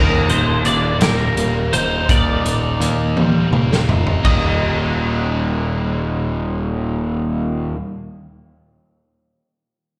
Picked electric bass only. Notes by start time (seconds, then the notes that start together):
Already playing: D#1
0.29 D#1
0.65 D#1
1.00 D#1
1.36 D#1
1.73 D#1
2.09 D#1
2.44 D#1
2.80 D#2
3.52 D#1
3.89 D#1
4.25 D#1